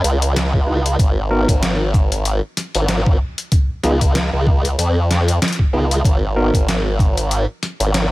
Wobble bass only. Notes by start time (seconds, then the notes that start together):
0.04 C#2
0.99 G#1
1.49 G#1
2.75 G#1
3.84 C#2
4.33 C#2
4.78 F2
5.73 C#2
6.05 G#1
6.54 G#1
7.80 G#1